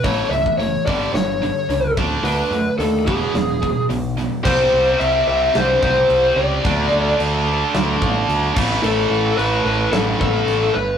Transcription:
0.03 0.23 A1 medium
0.03 0.30 A2 medium
0.03 0.30 E3 medium
0.03 0.30 A3 loud
0.03 0.30 C#5 loud
0.03 kick loud
0.03 open hi-hat medium
0.30 0.49 C#2 medium
0.30 0.56 A2 medium
0.30 0.57 E3 medium
0.30 0.57 E5 medium
0.30 open hi-hat soft
0.46 kick medium
0.57 0.76 F#1 medium
0.57 0.84 A2 medium
0.57 0.84 E3 medium
0.57 0.86 C#5 loud
0.57 open hi-hat medium
0.86 1.06 G1 medium
0.86 1.13 G2 medium
0.86 1.13 D3 medium
0.86 1.13 G3 loud
0.86 1.14 D5 medium
0.86 kick medium
0.86 open hi-hat soft
1.13 1.50 G1 medium
1.13 1.39 G2 medium
1.13 1.39 D3 medium
1.13 1.93 C#5 medium
1.13 snare loud
1.13 open hi-hat medium
1.42 1.67 G2 medium
1.42 1.67 D3 medium
1.42 open hi-hat soft
1.69 1.97 C#2 medium
1.69 1.94 G2 medium
1.69 1.94 D3 medium
1.69 open hi-hat medium
1.97 2.16 D2 medium
1.97 2.23 D3 medium
1.97 2.24 A3 medium
1.97 2.24 D4 medium
1.97 kick loud
1.97 snare soft
1.97 open hi-hat soft
2.23 2.42 D2 medium
2.23 2.51 D3 medium
2.23 2.51 A3 medium
2.23 2.51 D4 medium
2.23 2.78 B4 loud
2.23 open hi-hat medium
2.51 2.70 F#2 medium
2.51 2.77 D3 medium
2.51 2.77 A3 medium
2.51 open hi-hat soft
2.78 3.09 D#2 medium
2.78 3.05 D3 medium
2.78 3.05 A3 medium
2.78 3.06 A4 medium
2.78 open hi-hat medium
3.07 3.26 E1 medium
3.07 3.33 E2 medium
3.07 3.33 B2 medium
3.07 3.34 E3 medium
3.07 3.86 G#4 medium
3.07 kick medium
3.07 open hi-hat soft
3.34 3.71 E1 medium
3.34 3.59 E2 medium
3.34 3.60 B2 medium
3.34 snare loud
3.34 open hi-hat medium
3.62 3.87 E2 medium
3.62 3.87 B2 medium
3.62 kick medium
3.62 open hi-hat soft
3.89 4.26 B1 medium
3.89 4.14 E2 medium
3.89 4.14 B2 medium
3.89 open hi-hat medium
4.17 4.42 E2 medium
4.17 4.42 B2 medium
4.17 snare soft
4.17 open hi-hat soft
4.43 4.67 C2 loud
4.43 6.62 C3 medium
4.43 6.63 G3 loud
4.43 5.01 C5 loud
4.43 kick loud
4.43 crash loud
4.43 crash medium
4.47 6.64 C4 loud
4.73 4.94 C2 medium
4.99 5.22 C2 medium
4.99 5.27 E5 loud
4.99 crash medium
5.27 5.48 C2 medium
5.27 5.56 E5 loud
5.55 5.76 C2 medium
5.55 5.82 C5 medium
5.55 snare loud
5.55 crash medium
5.82 6.04 C2 medium
5.82 6.39 C5 medium
5.82 kick medium
6.09 6.31 C2 medium
6.09 crash medium
6.36 6.58 C#2 medium
6.36 7.15 D5 medium
6.63 6.86 D2 medium
6.63 8.54 D3 loud
6.63 8.55 A3 loud
6.63 8.56 D4 loud
6.63 kick loud
6.63 crash medium
6.92 7.13 D2 medium
7.20 7.62 D2 medium
7.20 crash medium
7.74 7.96 D2 medium
7.74 snare loud
7.74 crash medium
8.01 8.23 A1 medium
8.01 kick medium
8.29 8.50 D2 medium
8.29 crash medium
8.55 8.78 A1 medium
8.55 10.73 A2 loud
8.55 10.74 E3 loud
8.55 10.75 A3 loud
8.55 kick loud
8.55 crash loud
8.83 9.05 A1 medium
8.83 9.37 A4 loud
8.83 crash medium
9.10 9.32 A1 medium
9.37 9.59 A1 medium
9.37 9.65 B4 loud
9.37 crash medium
9.65 9.87 A1 medium
9.65 9.92 B4 loud
9.92 10.14 A1 loud
9.92 10.00 A4 medium
9.92 snare loud
9.92 crash medium
10.20 10.42 A1 medium
10.20 10.74 A4 medium
10.20 kick medium
10.47 10.69 A1 medium
10.47 crash medium
10.75 10.98 G1 medium
10.75 10.98 B4 medium

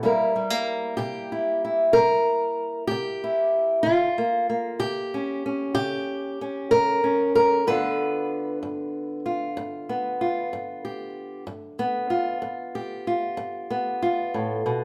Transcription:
0.03 0.60 C3 medium
0.03 0.36 G3 soft
0.03 0.35 A#3 soft
0.03 1.32 E4 soft
0.03 0.96 A#4 soft
0.36 0.50 G3 soft
0.50 3.85 A#3 soft
0.97 1.56 C3 medium
0.97 1.93 G4 medium
1.32 1.64 E4 soft
1.65 3.22 E4 soft
1.93 2.53 C3 medium
1.93 2.87 A#4 medium
2.87 3.48 C3 medium
2.87 3.84 G4 medium
3.24 3.82 E4 soft
3.83 4.43 C#3 medium
3.83 4.79 F4 medium
4.18 4.48 A#3 soft
4.49 7.63 A#3 soft
4.79 5.37 C#3 medium
4.79 5.73 G4 medium
5.14 5.44 C#4 soft
5.46 6.40 C#4 soft
5.75 6.32 C#3 medium
5.75 6.70 G4 loud
6.41 7.03 C#4 soft
6.71 7.29 C#3 medium
6.71 7.34 A#4 medium
7.04 7.63 C#4 soft
7.35 7.67 A#4 medium
7.67 8.24 G2 medium
7.67 14.84 D3 soft
7.67 9.88 B3 soft
7.67 9.25 F4 soft
7.67 10.84 B4 loud
8.63 9.19 G2 medium
9.26 10.20 F4 soft
9.57 10.14 G2 medium
9.89 11.43 B3 soft
10.21 11.43 F4 medium
10.53 11.09 G2 medium
10.85 11.44 G4 soft
11.47 12.04 G2 medium
11.79 13.69 B3 medium
12.10 13.05 F4 medium
12.42 12.99 G2 medium
12.75 14.84 G4 medium
13.07 14.01 F4 medium
13.37 13.94 G2 medium
13.70 14.84 B3 medium
14.02 14.84 F4 medium
14.34 14.65 A2 medium
14.66 14.84 B2 medium

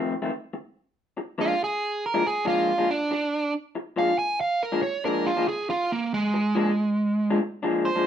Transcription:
0.00 0.14 F2 medium
0.00 0.14 D#3 medium
0.00 0.13 A3 medium
0.00 0.13 C4 loud
0.22 0.30 F2 medium
0.22 0.31 D#3 medium
0.22 0.31 A3 medium
0.22 0.31 C4 medium
0.32 muted clean electric guitar stroke soft
0.53 muted clean electric guitar stroke soft
1.17 muted clean electric guitar stroke soft
1.38 1.52 A#2 medium
1.38 1.53 F3 medium
1.38 1.53 G#3 medium
1.38 1.53 D4 loud
1.38 1.61 F4 medium
1.64 2.04 G#4 medium
2.06 2.26 A#4 medium
2.14 2.23 A#2 medium
2.14 2.23 F3 medium
2.14 2.24 G#3 medium
2.14 2.23 D4 medium
2.24 2.47 G#4 medium
2.24 muted clean electric guitar stroke soft
2.45 2.71 A#2 medium
2.45 2.71 F3 medium
2.45 2.71 G#3 medium
2.45 2.71 D4 medium
2.45 2.89 F4 medium
2.78 2.88 A#2 medium
2.78 2.88 F3 medium
2.78 2.89 G#3 medium
2.78 2.89 D4 medium
2.90 3.53 D4 medium
2.90 muted clean electric guitar stroke soft
3.11 muted clean electric guitar stroke soft
3.75 muted clean electric guitar stroke medium
3.96 4.11 A#2 medium
3.96 4.11 F3 medium
3.96 4.11 G#3 medium
3.96 4.11 D4 medium
3.96 4.18 F5 medium
4.19 4.39 G#5 medium
4.41 4.61 F5 medium
4.63 4.82 A#4 medium
4.72 4.82 A#2 medium
4.72 4.82 F3 medium
4.72 4.83 G#3 medium
4.72 4.83 D4 medium
4.82 5.04 C#5 medium
4.82 muted clean electric guitar stroke soft
5.05 5.30 A#2 medium
5.05 5.30 F3 medium
5.05 5.30 G#3 medium
5.05 5.30 D4 loud
5.05 5.26 A#4 medium
5.26 5.47 F4 medium
5.36 5.46 A#2 medium
5.36 5.47 F3 medium
5.36 5.47 G#3 medium
5.36 5.47 D4 medium
5.48 5.69 G#4 medium
5.48 muted clean electric guitar stroke soft
5.69 5.90 F4 medium
5.69 muted clean electric guitar stroke soft
5.92 6.12 A#3 medium
6.14 7.38 G#3 medium
6.34 muted clean electric guitar stroke soft
6.55 6.69 A#2 medium
6.55 6.69 F3 medium
6.55 6.70 G#3 loud
6.55 6.70 D4 loud
7.30 7.39 A#2 medium
7.30 7.40 F3 medium
7.30 7.40 G#3 medium
7.30 7.40 D4 medium
7.41 muted clean electric guitar stroke soft
7.63 7.89 A#2 medium
7.63 7.88 F3 medium
7.63 7.88 G#3 medium
7.63 7.88 D4 medium
7.85 8.06 C5 medium
7.95 8.05 A#2 medium
7.95 8.04 F3 medium
7.95 8.05 G#3 medium
7.95 8.05 D4 medium

